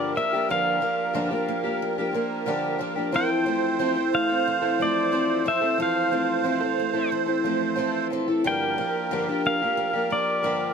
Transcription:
Already playing: twelve-string acoustic guitar G2 D3 F3 A#3 D4 G4, steel-string acoustic guitar F3 A#3 D4, accordion A#4, pedal steel guitar D5
0.15 twelve-string acoustic guitar F3 A#3 D4 G4, steel-string acoustic guitar F3, pedal steel guitar E5
0.33 twelve-string acoustic guitar F3 A#3 D4 G4
0.49 twelve-string acoustic guitar G2 D3 F3 A#3 D4 G4, steel-string acoustic guitar F3, pedal steel guitar F5
0.80 twelve-string acoustic guitar F3 A#3 D4 G4, steel-string acoustic guitar A#3
1.13 twelve-string acoustic guitar G2 D3 F3 A#3 D4 G4, steel-string acoustic guitar D4
1.30 twelve-string acoustic guitar F3 A#3 D4 G4
1.48 steel-string acoustic guitar A#3
1.64 twelve-string acoustic guitar F3 A#3 D4 G4
1.82 steel-string acoustic guitar F3
1.98 twelve-string acoustic guitar F3 A#3 D4 G4
2.13 twelve-string acoustic guitar F3 A#3 D4 G4, steel-string acoustic guitar A#3
2.46 twelve-string acoustic guitar G2 D3 F3 A#3 D4 G4, steel-string acoustic guitar D4
2.79 twelve-string acoustic guitar F3 A#3 D4 G4, steel-string acoustic guitar F3
2.96 twelve-string acoustic guitar F3 A#3 D4 G4
3.12 steel-string acoustic guitar E3, twelve-string acoustic guitar F3 C4 E4 A4, accordion C5, pedal steel guitar G5
3.45 twelve-string acoustic guitar F3 C4 E4 A4, steel-string acoustic guitar A3
3.79 twelve-string acoustic guitar F3 C4 E4 A4, steel-string acoustic guitar C4
3.96 twelve-string acoustic guitar C4 E4 A4
4.13 steel-string acoustic guitar A3, pedal steel guitar F5
4.29 twelve-string acoustic guitar C4 A4
4.48 steel-string acoustic guitar E3
4.62 twelve-string acoustic guitar C4 E4 A4
4.79 twelve-string acoustic guitar F3 C4 E4 A4, steel-string acoustic guitar A3, pedal steel guitar D5
5.12 twelve-string acoustic guitar F3 C4 E4 A4, steel-string acoustic guitar C4
5.44 steel-string acoustic guitar E3, twelve-string acoustic guitar F3 C4 E4 A4, pedal steel guitar E5
5.61 twelve-string acoustic guitar C4 E4 A4
5.78 steel-string acoustic guitar E3, twelve-string acoustic guitar F3 C4 A4
5.82 pedal steel guitar F5
6.11 twelve-string acoustic guitar F3 C4 A4, steel-string acoustic guitar A3
6.43 twelve-string acoustic guitar F3 C4 E4 A4, steel-string acoustic guitar C4
6.60 twelve-string acoustic guitar C4 A4
6.79 steel-string acoustic guitar A3
6.93 twelve-string acoustic guitar C4 E4 A4
7.12 steel-string acoustic guitar E3
7.26 twelve-string acoustic guitar C4 E4 A4
7.44 twelve-string acoustic guitar F3 C4 E4 A4, steel-string acoustic guitar A3
7.76 twelve-string acoustic guitar F3 C4 E4 A4, steel-string acoustic guitar C4
8.10 steel-string acoustic guitar E3, twelve-string acoustic guitar F3 C4 E4 A4
8.28 twelve-string acoustic guitar C4 E4 A4
8.44 twelve-string acoustic guitar G2 D3 F3 A#3 D4 G4, steel-string acoustic guitar F3, accordion A#4, pedal steel guitar G5
8.78 twelve-string acoustic guitar F3 A#3 D4 G4, steel-string acoustic guitar A#3
9.11 twelve-string acoustic guitar G2 D3 F3 A#3 D4 G4, steel-string acoustic guitar D4
9.28 twelve-string acoustic guitar F3 A#3 D4 G4
9.45 steel-string acoustic guitar A#3, pedal steel guitar F5
9.62 twelve-string acoustic guitar F3 A#3 D4 G4
9.77 steel-string acoustic guitar F3
9.93 twelve-string acoustic guitar F3 A#3 D4 G4
10.10 twelve-string acoustic guitar F3 A#3 D4 G4, steel-string acoustic guitar A#3, pedal steel guitar D5
10.43 twelve-string acoustic guitar G2 D3 F3 A#3 D4 G4, steel-string acoustic guitar D4

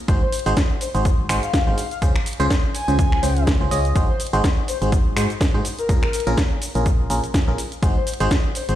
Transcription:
0.08 fm bass G#1, fm electric piano G#3 D#4 F#4 G#4 C5, kick, closed hi-hat, shaker
0.22 soft synth lead C5
0.32 open hi-hat, shaker
0.39 closed hi-hat
0.46 fm bass G#1, fm electric piano G#3 D#4 F#4 G#4 C5, closed hi-hat, shaker
0.57 kick, snare, closed hi-hat, shaker
0.81 soft synth lead C5, open hi-hat, shaker
0.94 fm bass G#1, fm electric piano G#3 D#4 F#4 G#4 C5, soft synth lead C5, closed hi-hat, shaker
1.05 kick, closed hi-hat, shaker
1.29 fm bass G#1, fm electric piano G#3 D#4 F#4 G#4 C5, finger snap, open hi-hat, shaker
1.43 soft synth lead F5, closed hi-hat, shaker
1.54 soft synth lead F5, kick, snare, closed hi-hat, shaker
1.67 fm bass G#1, fm electric piano G#3 D#4 F#4 G#4 C5, soft synth lead F5
1.78 soft synth lead F5, open hi-hat, shaker
1.91 soft synth lead F5, closed hi-hat, shaker
2.02 fm bass C#2, fm electric piano C#3 C#4 F4 G#4 C5, kick, closed hi-hat, shaker
2.16 finger snap
2.26 open hi-hat, shaker
2.33 closed hi-hat
2.40 fm bass C#2, fm electric piano C#3 C#4 F4 G#4 C5, closed hi-hat, shaker
2.50 kick, snare, closed hi-hat, shaker
2.75 soft synth lead G#5, open hi-hat, shaker
2.88 fm bass C#2, fm electric piano C#3 C#4 F4 G#4 C5, closed hi-hat, shaker
2.99 kick, closed hi-hat, shaker
3.12 finger snap
3.23 fm bass C#2, fm electric piano C#3 C#4 F4 G#4 C5, open hi-hat, shaker
3.37 closed hi-hat, shaker
3.47 kick, snare, closed hi-hat, shaker
3.61 fm bass C#2, fm electric piano C#3 C#4 F4 G#4 C5
3.71 fm bass C#2, fm electric piano C#4 F4 G#4 D#5, open hi-hat, shaker
3.85 closed hi-hat, shaker
3.95 fm bass G#1, fm electric piano G#3 D#4 F#4 G#4 C5, kick, closed hi-hat, shaker
4.09 soft synth lead C5
4.20 open hi-hat, shaker
4.27 closed hi-hat
4.33 fm bass G#1, fm electric piano G#3 D#4 F#4 G#4 C5, closed hi-hat, shaker
4.44 kick, snare, closed hi-hat, shaker
4.68 soft synth lead C5, open hi-hat, shaker
4.82 fm bass G#1, fm electric piano G#3 D#4 F#4 G#4 C5, soft synth lead C5, closed hi-hat, shaker
4.92 kick, closed hi-hat, shaker
5.16 fm bass G#2, fm electric piano G#3 D#4 F#4 G#4 C5, finger snap, open hi-hat, shaker
5.30 closed hi-hat, shaker
5.41 kick, snare, closed hi-hat, shaker
5.54 fm bass G#2, fm electric piano D#4 F#4 G#4 C5
5.65 open hi-hat, shaker
5.78 soft synth lead A#4, closed hi-hat, shaker
5.89 fm bass A#1, fm electric piano A#2 C#4 F4 G#4 A#4, kick, closed hi-hat, shaker
6.03 soft synth lead A#4, finger snap
6.13 soft synth lead A#4, open hi-hat, shaker
6.20 closed hi-hat
6.27 fm bass A#1, fm electric piano A#2 C#4 F4 G#4 A#4, closed hi-hat, shaker
6.37 kick, snare, closed hi-hat, shaker
6.62 open hi-hat, shaker
6.75 fm bass A#1, fm electric piano A#2 C#4 F4 G#4 A#4, closed hi-hat, shaker
6.86 kick, closed hi-hat, shaker
7.10 fm bass A#1, fm electric piano A#2 C#4 F4 G#4 A#4, open hi-hat, shaker
7.24 closed hi-hat, shaker
7.34 kick, snare, closed hi-hat, shaker
7.48 fm bass A#1, fm electric piano A#2 C#4 F4 G#4 A#4
7.58 open hi-hat, shaker
7.72 closed hi-hat, shaker
7.83 fm bass G#1, fm electric piano G#3 D#4 F#4 G#4 C5, kick, closed hi-hat, shaker
7.96 soft synth lead C5
8.07 open hi-hat, shaker
8.14 closed hi-hat
8.20 fm bass G#1, fm electric piano G#3 D#4 F#4 G#4 C5, closed hi-hat, shaker
8.31 kick, snare, closed hi-hat, shaker
8.55 soft synth lead C5, open hi-hat, shaker
8.69 fm bass G#1, fm electric piano G#3 D#4 F#4 G#4 C5, soft synth lead C5, closed hi-hat, shaker

